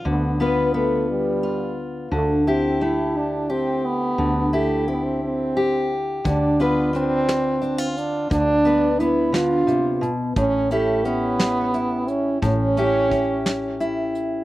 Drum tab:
HH |------|------|------|xxxxxx|
SD |------|------|------|---o--|
BD |------|------|------|o-----|

HH |xxxxxx|xxxxxx|xxxxxx|
SD |---o--|---o--|---o--|
BD |o-----|o-----|o-o---|